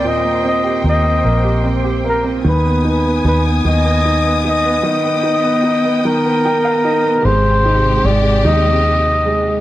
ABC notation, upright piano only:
X:1
M:6/8
L:1/16
Q:3/8=50
K:Ablyd
V:1 name="Upright piano"
z12 | z12 | z8 g f e2 | z12 |]
V:2 name="Upright piano"
[B,,B,CG] B, C G B, C B, G C G B, C | E, _C E C E C E, C E C E C | E, _C E C E C E, C E C E C | A,2 E2 A,2 E4 A,2 |]